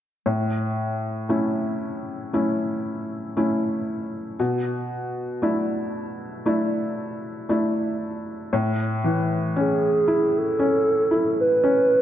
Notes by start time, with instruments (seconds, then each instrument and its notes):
0.26 felt piano A2
1.29 felt piano A3 C#4 E4
2.33 felt piano A3 C#4 E4
3.37 felt piano A3 C#4 E4
4.39 felt piano B2
5.42 felt piano A3 D4 E4
6.46 felt piano A3 D4 E4
7.49 felt piano A3 D4 E4
8.53 felt piano A2
9.04 felt piano E3
9.56 felt piano C#4, soft synth lead G#4
10.08 felt piano E4
10.38 soft synth lead A4
10.59 felt piano C#4
11.11 felt piano E4
11.41 soft synth lead B4
11.64 felt piano C#4